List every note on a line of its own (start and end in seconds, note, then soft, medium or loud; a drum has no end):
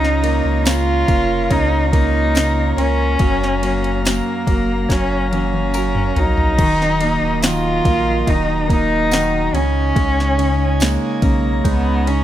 0.00 0.41 C#2 loud
0.00 0.64 C#3 medium
0.00 3.20 C#3 medium
0.00 0.23 C#4 medium
0.00 0.69 D#4 loud
0.00 3.16 F4 medium
0.00 3.16 C#5 medium
0.00 9.49 A#5 medium
0.04 snare soft
0.23 1.07 A#3 medium
0.23 1.05 A#3 medium
0.23 ride medium
0.45 1.04 C#2 loud
0.65 1.49 C#3 medium
0.65 1.50 C#4 medium
0.65 1.53 F4 loud
0.65 snare loud
0.65 ride medium
0.65 tambourine medium
1.06 1.48 F1 medium
1.06 1.91 A#3 medium
1.06 1.93 A#3 medium
1.06 kick medium
1.06 ride medium
1.50 2.73 C#2 loud
1.50 2.34 C#3 medium
1.50 2.76 C#4 medium
1.50 1.91 D#4 loud
1.50 kick medium
1.50 ride medium
1.92 2.77 A#3 medium
1.92 3.62 A#3 medium
1.92 2.73 D#4 loud
1.92 kick medium
1.92 ride medium
2.35 3.17 C#3 medium
2.35 5.74 A#4 medium
2.35 snare loud
2.35 ride medium
2.35 tambourine medium
2.77 3.17 C#2 loud
2.77 3.19 A#3 medium
2.77 4.04 C#4 medium
2.77 4.00 C#4 loud
2.77 ride medium
3.19 4.21 F#1 loud
3.19 6.58 F#2 medium
3.19 3.61 F#3 medium
3.19 9.50 F#3 medium
3.19 6.55 F5 medium
3.19 kick loud
3.19 ride medium
3.43 snare soft
3.63 4.04 F#3 medium
3.63 4.46 A#3 medium
3.63 ride medium
3.84 ride soft
4.05 4.47 F#3 medium
4.05 4.94 A#3 loud
4.05 4.87 C#4 medium
4.05 snare loud
4.05 ride medium
4.05 tambourine medium
4.47 4.86 F#1 medium
4.47 4.89 F#3 soft
4.47 5.31 A#3 medium
4.47 kick medium
4.47 ride medium
4.89 6.12 F#1 loud
4.89 5.32 F#3 medium
4.89 6.15 C#4 medium
4.89 5.33 C#4 loud
4.89 kick medium
4.89 snare medium
4.89 ride medium
5.31 5.74 F#3 medium
5.31 7.00 A#3 medium
5.31 6.21 C#4 medium
5.31 high tom medium
5.31 ride medium
5.53 high tom medium
5.74 6.16 F#3 medium
5.74 9.12 A#4 medium
5.74 ride medium
5.74 tambourine medium
5.95 mid tom medium
6.16 6.60 A#1 medium
6.16 6.58 F#3 medium
6.16 6.67 C#4 soft
6.16 7.44 D#4 loud
6.16 floor tom medium
6.16 ride medium
6.37 floor tom loud
6.58 7.17 D#1 loud
6.58 9.53 D#3 medium
6.58 7.43 D#3 medium
6.58 9.51 D#5 medium
6.58 kick loud
6.58 crash medium
6.82 snare soft
7.01 7.84 A#3 medium
7.01 ride medium
7.21 7.81 D#1 medium
7.43 8.26 D#3 medium
7.43 8.27 D#4 medium
7.43 8.32 F4 loud
7.43 snare loud
7.43 ride medium
7.43 tambourine medium
7.85 8.24 A#1 medium
7.85 8.68 A#3 medium
7.85 8.67 A#3 medium
7.85 kick loud
7.85 ride medium
8.27 9.50 D#1 loud
8.27 9.10 D#3 medium
8.27 9.99 D#4 medium
8.27 8.71 D#4 loud
8.27 kick medium
8.27 ride medium
8.68 9.51 A#3 medium
8.68 9.62 A#3 medium
8.68 9.56 D#4 loud
8.68 kick medium
8.68 ride medium
9.11 9.52 D#3 medium
9.11 9.62 F#4 medium
9.11 snare loud
9.11 ride medium
9.11 tambourine medium
9.53 9.93 C#2 loud
9.53 9.94 C#3 medium
9.53 10.36 C#3 medium
9.53 10.83 C#4 loud
9.53 12.24 D#4 medium
9.53 12.24 C#5 medium
9.53 11.21 G#5 medium
9.53 ride medium
9.95 10.98 C#2 loud
9.95 12.24 C#3 medium
9.95 10.80 G#3 medium
9.95 kick loud
9.95 ride medium
10.20 snare soft
10.38 11.22 C#3 medium
10.38 11.22 C#4 medium
10.38 ride medium
10.80 11.64 G#3 medium
10.80 11.69 A#3 medium
10.80 11.63 D#4 medium
10.80 snare loud
10.80 ride medium
10.80 tambourine medium
11.22 11.62 B1 medium
11.22 12.06 C#3 medium
11.22 12.06 C#4 medium
11.22 12.24 A#5 medium
11.22 kick medium
11.22 ride medium
11.64 12.24 C#2 loud
11.64 12.24 G#3 medium
11.64 12.08 B3 loud
11.64 12.24 D#4 medium
11.64 kick medium
11.64 ride medium
12.07 12.24 C#3 medium
12.07 12.24 C#4 medium
12.07 12.24 C#4 loud
12.07 ride medium